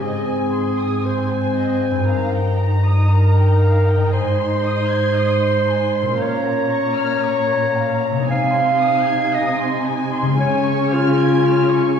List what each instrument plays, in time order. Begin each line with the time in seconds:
Already playing: harp G#2 D#4 G#4
0.00 cello section G#2, viola section C4, clarinet G#4, harp C5, violin section D#5
0.04 violin section G#5
0.29 violin section G#5
0.52 violin section C6
0.79 violin section D#6
1.06 clarinet C5, violin section C6
1.32 violin section G#5
1.57 violin section D#5
1.83 violin section G#5
1.91 harp G2
1.95 harp D#4
2.00 harp F4
2.05 viola section D#4, harp A#4
2.09 cello section G2, violin section F5 A#5
2.36 violin section G5
2.62 violin section A#5
2.88 violin section D#6
3.12 clarinet A#4, violin section A#5
3.38 violin section G5
3.64 violin section F5
3.87 violin section G5
3.95 harp G#2
4.00 harp D#4
4.04 harp G#4
4.09 cello section G#2, harp C5, clarinet C5, violin section G#5 C6
4.38 violin section C6
4.65 violin section D#6
4.90 violin section G#6
5.17 violin section D#6
5.43 violin section C6
5.70 violin section G#5
5.95 violin section C6
6.02 harp A#2
6.07 harp C#4
6.11 harp F4
6.16 viola section A#3, harp A#4, violin section F5
6.20 cello section A#2, clarinet C#5, violin section A#5
6.45 violin section A#5
6.72 violin section C#6
6.97 violin section F6
7.26 violin section C#6
7.53 violin section A#5
7.78 violin section F5
8.02 violin section A#5
8.11 harp C3
8.15 harp G#3
8.20 harp D#4
8.29 cello section C3, viola section D#4, clarinet F5, violin section G#5
8.55 violin section C6
8.81 violin section D#6
9.07 violin section G#6
9.33 clarinet D#5, violin section D#6
9.60 violin section C6
9.86 violin section G#5
10.13 violin section C6
10.22 harp C#3
10.26 harp G#3
10.31 harp C#4
10.35 harp F4, violin section G#5
10.40 cello section C#3, viola section C#4, clarinet C#5
10.65 violin section C#6
10.92 clarinet F4, violin section F6
11.20 violin section G#6
11.46 violin section F6
11.73 violin section C#6